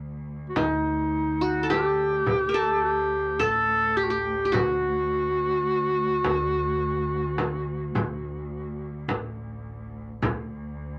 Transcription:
0, 0, Header, 1, 6, 480
1, 0, Start_track
1, 0, Tempo, 1136364
1, 1918, Time_signature, 10, 3, 24, 8
1, 4642, End_track
2, 0, Start_track
2, 0, Title_t, "Clarinet"
2, 0, Program_c, 0, 71
2, 207, Note_on_c, 0, 66, 55
2, 242, Note_on_c, 0, 63, 78
2, 249, Note_off_c, 0, 66, 0
2, 717, Note_on_c, 0, 67, 93
2, 723, Note_off_c, 0, 63, 0
2, 1197, Note_off_c, 0, 67, 0
2, 1199, Note_on_c, 0, 67, 84
2, 1440, Note_on_c, 0, 69, 100
2, 1446, Note_off_c, 0, 67, 0
2, 1677, Note_on_c, 0, 67, 80
2, 1683, Note_off_c, 0, 69, 0
2, 1706, Note_on_c, 0, 66, 70
2, 1712, Note_off_c, 0, 67, 0
2, 1739, Note_on_c, 0, 67, 96
2, 1746, Note_off_c, 0, 66, 0
2, 1916, Note_on_c, 0, 66, 88
2, 1922, Note_off_c, 0, 67, 0
2, 3836, Note_off_c, 0, 66, 0
2, 4642, End_track
3, 0, Start_track
3, 0, Title_t, "Qanun"
3, 0, Program_c, 1, 107
3, 236, Note_on_c, 1, 63, 60
3, 596, Note_on_c, 1, 66, 69
3, 688, Note_on_c, 1, 69, 57
3, 718, Note_on_c, 1, 67, 78
3, 743, Note_off_c, 1, 66, 0
3, 840, Note_off_c, 1, 63, 0
3, 1051, Note_on_c, 1, 70, 60
3, 1072, Note_off_c, 1, 69, 0
3, 1074, Note_on_c, 1, 69, 89
3, 1099, Note_off_c, 1, 70, 0
3, 1248, Note_off_c, 1, 67, 0
3, 1432, Note_off_c, 1, 69, 0
3, 1434, Note_on_c, 1, 69, 83
3, 1676, Note_on_c, 1, 67, 67
3, 1731, Note_off_c, 1, 67, 0
3, 1733, Note_on_c, 1, 67, 60
3, 1879, Note_off_c, 1, 67, 0
3, 1880, Note_on_c, 1, 67, 56
3, 1909, Note_on_c, 1, 66, 70
3, 1928, Note_off_c, 1, 69, 0
3, 1934, Note_off_c, 1, 67, 0
3, 3816, Note_off_c, 1, 66, 0
3, 4642, End_track
4, 0, Start_track
4, 0, Title_t, "Cello section"
4, 0, Program_c, 2, 48
4, 0, Note_on_c, 2, 38, 63
4, 4316, Note_off_c, 2, 38, 0
4, 4321, Note_on_c, 2, 38, 66
4, 4642, Note_off_c, 2, 38, 0
4, 4642, End_track
5, 0, Start_track
5, 0, Title_t, "Upright bass"
5, 0, Program_c, 3, 32
5, 0, Note_on_c, 3, 38, 77
5, 221, Note_off_c, 3, 38, 0
5, 237, Note_on_c, 3, 38, 94
5, 941, Note_off_c, 3, 38, 0
5, 956, Note_on_c, 3, 38, 83
5, 1420, Note_off_c, 3, 38, 0
5, 1436, Note_on_c, 3, 33, 90
5, 1900, Note_off_c, 3, 33, 0
5, 1916, Note_on_c, 3, 38, 83
5, 2620, Note_off_c, 3, 38, 0
5, 2636, Note_on_c, 3, 38, 88
5, 3340, Note_off_c, 3, 38, 0
5, 3357, Note_on_c, 3, 38, 75
5, 3820, Note_off_c, 3, 38, 0
5, 3837, Note_on_c, 3, 33, 83
5, 4300, Note_off_c, 3, 33, 0
5, 4318, Note_on_c, 3, 38, 81
5, 4642, Note_off_c, 3, 38, 0
5, 4642, End_track
6, 0, Start_track
6, 0, Title_t, "Frame drum"
6, 237, Note_on_c, 9, 64, 74
6, 279, Note_off_c, 9, 64, 0
6, 718, Note_on_c, 9, 64, 66
6, 760, Note_off_c, 9, 64, 0
6, 957, Note_on_c, 9, 64, 74
6, 999, Note_off_c, 9, 64, 0
6, 1435, Note_on_c, 9, 64, 54
6, 1478, Note_off_c, 9, 64, 0
6, 1918, Note_on_c, 9, 64, 83
6, 1960, Note_off_c, 9, 64, 0
6, 2638, Note_on_c, 9, 64, 67
6, 2680, Note_off_c, 9, 64, 0
6, 3118, Note_on_c, 9, 64, 67
6, 3160, Note_off_c, 9, 64, 0
6, 3359, Note_on_c, 9, 64, 80
6, 3402, Note_off_c, 9, 64, 0
6, 3839, Note_on_c, 9, 64, 64
6, 3881, Note_off_c, 9, 64, 0
6, 4320, Note_on_c, 9, 64, 85
6, 4362, Note_off_c, 9, 64, 0
6, 4642, End_track
0, 0, End_of_file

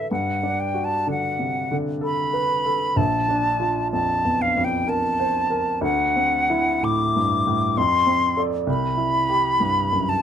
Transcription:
0, 0, Header, 1, 3, 480
1, 0, Start_track
1, 0, Tempo, 967742
1, 49, Time_signature, 3, 2, 24, 8
1, 1008, Tempo, 947867
1, 2928, Tempo, 1020408
1, 3408, Tempo, 924499
1, 5161, End_track
2, 0, Start_track
2, 0, Title_t, "Flute"
2, 0, Program_c, 0, 73
2, 0, Note_on_c, 0, 76, 62
2, 50, Note_off_c, 0, 76, 0
2, 59, Note_on_c, 0, 78, 55
2, 297, Note_on_c, 0, 79, 56
2, 305, Note_off_c, 0, 78, 0
2, 419, Note_on_c, 0, 81, 57
2, 427, Note_off_c, 0, 79, 0
2, 536, Note_off_c, 0, 81, 0
2, 550, Note_on_c, 0, 78, 60
2, 877, Note_off_c, 0, 78, 0
2, 1013, Note_on_c, 0, 83, 71
2, 1484, Note_on_c, 0, 81, 76
2, 1491, Note_off_c, 0, 83, 0
2, 1961, Note_off_c, 0, 81, 0
2, 1964, Note_on_c, 0, 81, 62
2, 2216, Note_on_c, 0, 77, 70
2, 2223, Note_off_c, 0, 81, 0
2, 2331, Note_on_c, 0, 79, 65
2, 2339, Note_off_c, 0, 77, 0
2, 2456, Note_on_c, 0, 81, 74
2, 2463, Note_off_c, 0, 79, 0
2, 2930, Note_off_c, 0, 81, 0
2, 2932, Note_on_c, 0, 78, 75
2, 3407, Note_on_c, 0, 86, 72
2, 3415, Note_off_c, 0, 78, 0
2, 3892, Note_on_c, 0, 84, 76
2, 3899, Note_off_c, 0, 86, 0
2, 4226, Note_off_c, 0, 84, 0
2, 4358, Note_on_c, 0, 83, 76
2, 5094, Note_on_c, 0, 81, 70
2, 5101, Note_off_c, 0, 83, 0
2, 5161, Note_off_c, 0, 81, 0
2, 5161, End_track
3, 0, Start_track
3, 0, Title_t, "Grand piano"
3, 0, Program_c, 1, 0
3, 0, Control_c, 1, 64, 127
3, 0, Note_on_c, 1, 50, 31
3, 0, Note_on_c, 1, 52, 34
3, 0, Note_on_c, 1, 69, 33
3, 0, Note_on_c, 1, 71, 32
3, 53, Note_off_c, 1, 69, 0
3, 55, Note_on_c, 1, 43, 45
3, 57, Control_c, 1, 64, 0
3, 58, Note_off_c, 1, 52, 0
3, 59, Note_off_c, 1, 50, 0
3, 59, Note_off_c, 1, 71, 0
3, 139, Control_c, 1, 64, 127
3, 215, Note_on_c, 1, 62, 37
3, 368, Note_on_c, 1, 66, 37
3, 470, Note_off_c, 1, 62, 0
3, 531, Note_on_c, 1, 50, 36
3, 627, Note_off_c, 1, 66, 0
3, 689, Note_on_c, 1, 48, 30
3, 788, Note_off_c, 1, 50, 0
3, 849, Note_off_c, 1, 48, 0
3, 849, Note_on_c, 1, 50, 41
3, 998, Note_on_c, 1, 69, 42
3, 1102, Note_off_c, 1, 50, 0
3, 1160, Note_on_c, 1, 71, 38
3, 1258, Note_off_c, 1, 69, 0
3, 1323, Note_off_c, 1, 71, 0
3, 1323, Note_on_c, 1, 69, 37
3, 1471, Note_off_c, 1, 43, 0
3, 1480, Note_on_c, 1, 34, 56
3, 1486, Note_off_c, 1, 69, 0
3, 1496, Control_c, 1, 64, 0
3, 1580, Control_c, 1, 64, 127
3, 1642, Note_on_c, 1, 62, 37
3, 1799, Note_on_c, 1, 65, 38
3, 1901, Note_off_c, 1, 62, 0
3, 1968, Note_on_c, 1, 41, 42
3, 2059, Note_off_c, 1, 65, 0
3, 2130, Note_on_c, 1, 40, 33
3, 2225, Note_off_c, 1, 41, 0
3, 2290, Note_off_c, 1, 40, 0
3, 2291, Note_on_c, 1, 41, 43
3, 2447, Note_on_c, 1, 70, 46
3, 2546, Note_off_c, 1, 41, 0
3, 2611, Note_on_c, 1, 72, 41
3, 2702, Note_off_c, 1, 70, 0
3, 2764, Note_on_c, 1, 70, 45
3, 2768, Note_off_c, 1, 72, 0
3, 2903, Note_off_c, 1, 34, 0
3, 2922, Note_on_c, 1, 38, 54
3, 2926, Note_off_c, 1, 70, 0
3, 2936, Control_c, 1, 64, 0
3, 3022, Control_c, 1, 64, 127
3, 3086, Note_on_c, 1, 60, 41
3, 3245, Note_on_c, 1, 64, 42
3, 3346, Note_off_c, 1, 60, 0
3, 3400, Note_on_c, 1, 45, 42
3, 3506, Note_off_c, 1, 64, 0
3, 3573, Note_on_c, 1, 43, 34
3, 3666, Note_off_c, 1, 45, 0
3, 3732, Note_on_c, 1, 45, 43
3, 3733, Note_off_c, 1, 43, 0
3, 3866, Note_off_c, 1, 38, 0
3, 3889, Note_off_c, 1, 45, 0
3, 3889, Note_on_c, 1, 41, 57
3, 3898, Control_c, 1, 64, 0
3, 3978, Control_c, 1, 64, 127
3, 4042, Note_on_c, 1, 60, 43
3, 4199, Note_on_c, 1, 69, 35
3, 4203, Note_on_c, 1, 74, 42
3, 4294, Note_off_c, 1, 60, 0
3, 4342, Note_off_c, 1, 69, 0
3, 4344, Note_off_c, 1, 41, 0
3, 4344, Note_off_c, 1, 74, 0
3, 4355, Note_on_c, 1, 36, 53
3, 4368, Control_c, 1, 64, 0
3, 4436, Control_c, 1, 64, 127
3, 4513, Note_on_c, 1, 64, 41
3, 4678, Note_on_c, 1, 67, 38
3, 4774, Note_off_c, 1, 64, 0
3, 4840, Note_on_c, 1, 43, 44
3, 4939, Note_off_c, 1, 67, 0
3, 5005, Note_on_c, 1, 42, 35
3, 5101, Note_off_c, 1, 43, 0
3, 5161, Note_off_c, 1, 36, 0
3, 5161, Note_off_c, 1, 42, 0
3, 5161, End_track
0, 0, End_of_file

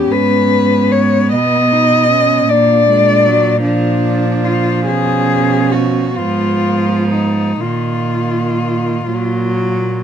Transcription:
0, 0, Header, 1, 5, 480
1, 0, Start_track
1, 0, Tempo, 784314
1, 73, Time_signature, 6, 3, 24, 8
1, 2472, Tempo, 839161
1, 3432, Tempo, 918836
1, 3912, Tempo, 990099
1, 5559, End_track
2, 0, Start_track
2, 0, Title_t, "Cello"
2, 0, Program_c, 0, 42
2, 0, Note_on_c, 0, 67, 68
2, 69, Note_on_c, 0, 71, 84
2, 78, Note_off_c, 0, 67, 0
2, 560, Note_on_c, 0, 73, 76
2, 569, Note_off_c, 0, 71, 0
2, 805, Note_off_c, 0, 73, 0
2, 811, Note_on_c, 0, 75, 94
2, 1526, Note_on_c, 0, 74, 83
2, 1535, Note_off_c, 0, 75, 0
2, 2216, Note_off_c, 0, 74, 0
2, 2219, Note_on_c, 0, 62, 75
2, 2707, Note_on_c, 0, 65, 73
2, 2715, Note_off_c, 0, 62, 0
2, 2937, Note_off_c, 0, 65, 0
2, 2940, Note_on_c, 0, 68, 79
2, 3431, Note_on_c, 0, 66, 62
2, 3439, Note_off_c, 0, 68, 0
2, 3668, Note_on_c, 0, 65, 70
2, 3676, Note_off_c, 0, 66, 0
2, 4142, Note_off_c, 0, 65, 0
2, 4145, Note_on_c, 0, 63, 58
2, 4382, Note_on_c, 0, 65, 63
2, 4390, Note_off_c, 0, 63, 0
2, 5559, Note_off_c, 0, 65, 0
2, 5559, End_track
3, 0, Start_track
3, 0, Title_t, "Cello"
3, 0, Program_c, 1, 42
3, 0, Note_on_c, 1, 61, 48
3, 802, Note_off_c, 1, 61, 0
3, 806, Note_on_c, 1, 59, 57
3, 1054, Note_on_c, 1, 63, 53
3, 1064, Note_off_c, 1, 59, 0
3, 1289, Note_off_c, 1, 63, 0
3, 1292, Note_on_c, 1, 61, 61
3, 1528, Note_on_c, 1, 62, 58
3, 1537, Note_off_c, 1, 61, 0
3, 2224, Note_off_c, 1, 62, 0
3, 2227, Note_on_c, 1, 62, 52
3, 2947, Note_on_c, 1, 61, 54
3, 2956, Note_off_c, 1, 62, 0
3, 3669, Note_off_c, 1, 61, 0
3, 3671, Note_on_c, 1, 59, 48
3, 4378, Note_off_c, 1, 59, 0
3, 4391, Note_on_c, 1, 58, 43
3, 5088, Note_off_c, 1, 58, 0
3, 5093, Note_on_c, 1, 58, 42
3, 5559, Note_off_c, 1, 58, 0
3, 5559, End_track
4, 0, Start_track
4, 0, Title_t, "Cello"
4, 0, Program_c, 2, 42
4, 0, Note_on_c, 2, 59, 55
4, 1502, Note_off_c, 2, 59, 0
4, 1528, Note_on_c, 2, 58, 55
4, 1757, Note_off_c, 2, 58, 0
4, 1765, Note_on_c, 2, 56, 57
4, 1996, Note_on_c, 2, 54, 60
4, 2005, Note_off_c, 2, 56, 0
4, 2224, Note_off_c, 2, 54, 0
4, 2227, Note_on_c, 2, 53, 61
4, 3647, Note_off_c, 2, 53, 0
4, 3665, Note_on_c, 2, 53, 58
4, 4375, Note_off_c, 2, 53, 0
4, 4390, Note_on_c, 2, 51, 45
4, 5087, Note_off_c, 2, 51, 0
4, 5101, Note_on_c, 2, 54, 71
4, 5559, Note_off_c, 2, 54, 0
4, 5559, End_track
5, 0, Start_track
5, 0, Title_t, "Cello"
5, 0, Program_c, 3, 42
5, 0, Note_on_c, 3, 40, 47
5, 67, Note_off_c, 3, 40, 0
5, 71, Note_on_c, 3, 44, 57
5, 811, Note_on_c, 3, 47, 49
5, 820, Note_off_c, 3, 44, 0
5, 1526, Note_off_c, 3, 47, 0
5, 1529, Note_on_c, 3, 46, 58
5, 2945, Note_on_c, 3, 47, 58
5, 2953, Note_off_c, 3, 46, 0
5, 3673, Note_on_c, 3, 44, 52
5, 3681, Note_off_c, 3, 47, 0
5, 4389, Note_off_c, 3, 44, 0
5, 4391, Note_on_c, 3, 46, 46
5, 5088, Note_off_c, 3, 46, 0
5, 5094, Note_on_c, 3, 46, 45
5, 5559, Note_off_c, 3, 46, 0
5, 5559, End_track
0, 0, End_of_file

